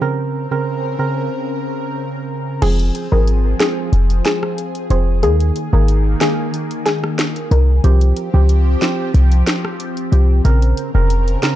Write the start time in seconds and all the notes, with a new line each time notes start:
0.01 C#3 C4 A#4
0.51 C#3 C4 A#4
0.99 C#3 C4 A#4
2.62 F1 F3 C4 G#4, closed hi-hat, crash
2.79 closed hi-hat
2.95 closed hi-hat
3.12 G#1 F3 C4 G#4 A#4
3.27 closed hi-hat
3.60 F3 C4 G#4, snare, closed hi-hat
3.93 F1, closed hi-hat
4.10 closed hi-hat
4.25 G#4, snare, closed hi-hat
4.43 cross-stick
4.58 closed hi-hat
4.75 closed hi-hat
4.90 F1 F3 C4 G#4 C5, closed hi-hat
5.23 D#2 D#3 A#3 G#4, closed hi-hat
5.40 closed hi-hat
5.56 closed hi-hat
5.72 G#1 D#3 A#3 G#4 A#4
5.88 closed hi-hat
6.21 D#3 A#3 G#4, snare, closed hi-hat
6.54 closed hi-hat
6.71 closed hi-hat
6.86 G#4, snare, closed hi-hat
7.04 cross-stick
7.19 snare, closed hi-hat
7.36 closed hi-hat
7.51 C2 A#4, closed hi-hat
7.84 C2 F3 C4 G4, closed hi-hat
8.01 closed hi-hat
8.16 closed hi-hat
8.34 C#2 F3 C4 G4
8.49 closed hi-hat
8.81 F3 C4 G4, snare, closed hi-hat
9.14 C2, closed hi-hat
9.32 closed hi-hat
9.47 snare, closed hi-hat
9.65 cross-stick
9.80 closed hi-hat
9.97 closed hi-hat
10.12 C2 F3 C4 G4, closed hi-hat
10.44 A#1 C#3 C4 A#4, closed hi-hat
10.62 closed hi-hat
10.77 closed hi-hat
10.94 F1 C#3 C4 A#4
11.10 closed hi-hat
11.28 closed hi-hat
11.42 C#3 C4 A#4, snare, closed hi-hat